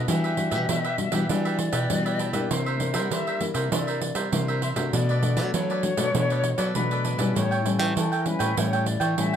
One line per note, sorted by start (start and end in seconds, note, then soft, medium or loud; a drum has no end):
0.08 0.53 E3 medium
0.08 0.66 E3 medium
0.08 0.33 G3 medium
0.08 0.22 D4 soft
0.08 0.34 D4 medium
0.08 0.34 F#4 medium
0.08 0.22 G4 medium
0.08 0.22 B4 medium
0.08 1.31 E5 loud
0.08 0.23 E5 medium
0.08 pandeiro medium
0.24 0.52 G4 medium
0.24 0.51 B4 medium
0.24 0.50 E5 medium
0.24 pandeiro soft
0.37 0.77 G3 medium
0.37 0.77 D4 medium
0.37 0.77 F#4 medium
0.37 pandeiro medium
0.51 0.65 B2 medium
0.51 0.67 G4 medium
0.51 0.67 B4 medium
0.51 0.66 E5 medium
0.51 pandeiro medium
0.69 1.07 B2 medium
0.69 1.26 B2 medium
0.69 0.82 D4 soft
0.69 0.83 G4 soft
0.69 0.83 B4 medium
0.69 0.83 E5 medium
0.69 pandeiro medium
0.84 0.97 G4 medium
0.84 0.97 B4 medium
0.84 0.98 E5 medium
0.84 pandeiro soft
0.98 1.09 G3 medium
0.98 1.09 D4 medium
0.98 1.09 F#4 medium
0.98 muted cavaquinho stroke soft
0.98 pandeiro medium
1.12 1.26 E3 medium
1.12 1.23 G3 medium
1.12 1.23 D4 medium
1.12 1.24 F#4 medium
1.12 1.28 G4 medium
1.12 1.28 B4 medium
1.12 1.27 E5 medium
1.12 pandeiro medium
1.29 1.68 E3 loud
1.29 1.87 E3 medium
1.29 1.68 G3 soft
1.29 1.43 D4 medium
1.29 1.69 D4 medium
1.29 1.69 F#4 medium
1.29 1.44 G4 soft
1.29 1.44 B4 medium
1.29 2.43 D5 loud
1.29 1.44 E5 medium
1.29 pandeiro medium
1.45 1.58 G4 medium
1.45 1.58 B4 medium
1.45 1.58 E5 medium
1.45 pandeiro soft
1.58 muted cavaquinho stroke soft
1.58 pandeiro medium
1.73 1.86 B2 medium
1.73 2.03 G4 medium
1.73 2.03 B4 medium
1.73 2.03 E5 medium
1.73 pandeiro medium
1.90 2.48 B2 medium
1.90 2.29 E3 medium
1.90 2.31 G3 medium
1.90 2.31 D4 medium
1.90 2.31 F#4 medium
1.90 pandeiro medium
2.06 2.18 G4 medium
2.06 2.19 B4 medium
2.06 2.19 E5 medium
2.06 pandeiro soft
2.19 2.33 D4 soft
2.19 2.34 G4 soft
2.19 2.33 B4 medium
2.19 2.32 E5 medium
2.19 pandeiro medium
2.33 2.47 G3 medium
2.33 2.75 A#3 medium
2.33 2.75 D4 medium
2.33 2.76 E4 medium
2.33 2.49 G4 medium
2.33 2.49 B4 medium
2.33 2.48 E5 medium
2.33 pandeiro medium
2.43 2.52 D5 medium
2.50 2.96 C3 medium
2.50 3.08 C3 medium
2.50 2.65 E4 soft
2.50 2.65 A#4 medium
2.50 3.04 C5 loud
2.50 2.65 C5 medium
2.50 2.65 E5 medium
2.50 pandeiro medium
2.66 2.95 A#4 medium
2.66 2.94 C5 medium
2.66 2.93 E5 medium
2.66 pandeiro soft
2.80 3.36 A#3 medium
2.80 3.37 D4 medium
2.80 3.37 E4 medium
2.80 pandeiro medium
2.94 3.08 G3 medium
2.94 3.10 A#4 medium
2.94 3.10 C5 medium
2.94 3.09 E5 medium
2.94 pandeiro medium
3.04 3.12 F#5 medium
3.11 3.50 G3 medium
3.11 3.69 G3 medium
3.11 3.25 E4 soft
3.11 3.26 A#4 medium
3.11 3.26 C5 medium
3.11 3.45 E5 loud
3.11 3.26 E5 medium
3.11 pandeiro medium
3.27 3.40 A#4 medium
3.27 3.40 C5 medium
3.27 3.40 E5 medium
3.27 pandeiro soft
3.41 3.67 A#3 medium
3.41 3.67 D4 medium
3.41 3.67 E4 medium
3.41 muted cavaquinho stroke soft
3.41 pandeiro medium
3.54 3.68 C3 medium
3.54 3.70 A#4 medium
3.54 3.70 C5 medium
3.54 3.69 E5 medium
3.54 pandeiro medium
3.72 4.11 C3 loud
3.72 4.30 C3 medium
3.72 4.11 A#3 medium
3.72 4.11 D4 medium
3.72 3.86 E4 soft
3.72 4.12 E4 medium
3.72 3.86 A#4 medium
3.72 3.86 C5 medium
3.72 4.29 D5 loud
3.72 3.86 E5 medium
3.72 pandeiro medium
3.87 4.00 A#4 medium
3.87 4.00 C5 medium
3.87 4.01 E5 medium
3.87 pandeiro soft
4.01 muted cavaquinho stroke soft
4.01 pandeiro medium
4.15 4.29 G3 medium
4.15 4.46 A#4 medium
4.15 4.46 C5 medium
4.15 4.45 E5 medium
4.15 pandeiro medium
4.32 4.71 C3 medium
4.32 4.90 G3 medium
4.32 4.61 A#3 medium
4.32 4.61 D4 medium
4.32 4.61 E4 medium
4.32 4.61 C5 medium
4.32 pandeiro medium
4.48 4.61 A#4 medium
4.48 4.62 C5 medium
4.48 4.62 E5 medium
4.48 pandeiro soft
4.62 4.76 E4 medium
4.62 4.76 A#4 soft
4.62 4.76 C5 medium
4.62 4.69 E5 medium
4.62 4.75 E5 medium
4.62 pandeiro medium
4.76 4.90 C3 medium
4.76 5.18 A3 medium
4.76 5.18 D4 medium
4.76 5.18 F#4 medium
4.76 4.92 A#4 medium
4.76 4.92 C5 medium
4.76 4.91 E5 medium
4.76 pandeiro medium
4.93 5.51 B2 medium
4.93 5.39 B2 medium
4.93 5.07 D4 soft
4.93 5.08 A4 soft
4.93 5.08 B4 medium
4.93 5.50 D5 medium
4.93 5.08 D5 soft
4.93 pandeiro medium
5.09 5.37 A4 medium
5.09 5.36 B4 medium
5.09 5.36 D5 medium
5.09 pandeiro soft
5.22 5.79 A3 medium
5.22 5.79 D4 medium
5.22 5.79 F#4 medium
5.22 pandeiro medium
5.37 5.50 F#3 medium
5.37 5.53 A4 medium
5.37 5.52 B4 medium
5.37 5.52 D5 medium
5.37 pandeiro medium
5.54 5.93 F#3 medium
5.54 6.12 F#3 medium
5.54 5.68 D4 soft
5.54 5.68 A4 soft
5.54 5.69 B4 medium
5.54 6.76 C#5 loud
5.54 5.69 D5 medium
5.54 pandeiro medium
5.70 5.83 A4 medium
5.70 5.83 B4 medium
5.70 5.83 D5 medium
5.70 pandeiro soft
5.83 5.93 A3 medium
5.83 5.93 D4 medium
5.83 5.93 F#4 medium
5.83 muted cavaquinho stroke soft
5.83 pandeiro medium
5.97 6.11 B2 medium
5.97 6.09 A3 medium
5.97 6.09 D4 medium
5.97 6.09 F#4 medium
5.97 6.13 A4 medium
5.97 6.13 B4 medium
5.97 6.12 D5 medium
5.97 pandeiro medium
6.14 6.53 B2 medium
6.14 6.73 B2 medium
6.14 6.54 A3 medium
6.14 6.29 D4 medium
6.14 6.54 D4 medium
6.14 6.54 F#4 medium
6.14 6.29 A4 medium
6.14 6.29 B4 medium
6.14 6.29 D5 medium
6.14 pandeiro medium
6.30 6.43 A4 medium
6.30 6.43 B4 medium
6.30 6.44 D5 medium
6.30 pandeiro soft
6.44 muted cavaquinho stroke soft
6.44 pandeiro medium
6.58 6.72 F#3 medium
6.58 6.89 A4 medium
6.58 6.89 B4 medium
6.58 6.88 D5 medium
6.58 pandeiro medium
6.75 7.14 B2 medium
6.75 7.33 F#3 medium
6.75 7.16 A3 medium
6.75 7.16 D4 medium
6.75 7.17 F#4 medium
6.75 7.38 B4 medium
6.75 pandeiro medium
6.91 7.03 A4 medium
6.91 7.04 B4 medium
6.91 7.05 D5 medium
6.91 pandeiro soft
7.04 7.19 D4 medium
7.04 7.19 A4 medium
7.04 7.18 B4 soft
7.04 7.17 D5 medium
7.04 pandeiro medium
7.18 7.32 B2 medium
7.18 7.61 G3 medium
7.18 7.61 C#4 medium
7.18 7.61 E4 medium
7.18 7.34 A4 medium
7.18 7.34 B4 medium
7.18 7.33 D5 medium
7.18 pandeiro medium
7.35 7.94 A2 medium
7.35 7.79 A2 loud
7.35 7.49 E4 soft
7.35 7.50 A4 medium
7.35 7.70 C#5 loud
7.35 7.50 C#5 soft
7.35 7.50 G5 medium
7.35 pandeiro medium
7.51 7.79 A4 soft
7.51 7.78 C#5 medium
7.51 7.78 G5 medium
7.51 pandeiro soft
7.65 8.05 G3 medium
7.65 8.05 C#4 medium
7.65 8.05 E4 medium
7.65 pandeiro medium
7.79 7.93 E3 medium
7.79 7.95 A4 medium
7.79 7.94 C#5 medium
7.79 7.94 G5 medium
7.79 pandeiro medium
7.96 8.35 E3 medium
7.96 8.54 E3 medium
7.96 8.10 E4 soft
7.96 8.10 A4 medium
7.96 8.22 A4 medium
7.96 8.11 C#5 medium
7.96 8.11 G5 medium
7.96 pandeiro medium
8.12 8.25 A4 medium
8.12 8.25 C#5 medium
8.12 8.25 G5 medium
8.12 pandeiro soft
8.21 8.28 A#4 medium
8.26 8.52 G3 medium
8.26 8.52 C#4 medium
8.26 8.52 E4 medium
8.26 8.59 B4 medium
8.26 muted cavaquinho stroke soft
8.26 pandeiro medium
8.39 8.54 A2 medium
8.39 8.55 A4 medium
8.39 8.55 C#5 medium
8.39 8.54 G5 medium
8.39 pandeiro medium
8.57 9.15 A2 medium
8.57 8.96 A2 loud
8.57 8.96 G3 medium
8.57 8.97 C#4 medium
8.57 8.71 E4 soft
8.57 8.97 E4 medium
8.57 8.71 A4 medium
8.57 8.71 C#5 medium
8.57 8.89 C#5 medium
8.57 8.72 G5 medium
8.57 pandeiro medium
8.73 8.85 A4 medium
8.73 8.86 C#5 medium
8.73 8.86 G5 medium
8.73 pandeiro soft
8.86 9.17 D5 loud
8.86 muted cavaquinho stroke soft
8.86 pandeiro medium
9.00 9.14 E3 medium
9.00 9.31 A4 medium
9.00 9.31 C#5 medium
9.00 9.30 G5 medium
9.00 pandeiro medium
9.18 9.36 A2 medium
9.18 9.36 E3 medium
9.18 9.36 G3 medium
9.18 9.36 C#4 medium
9.18 9.36 E4 medium
9.18 9.36 E5 loud
9.18 pandeiro medium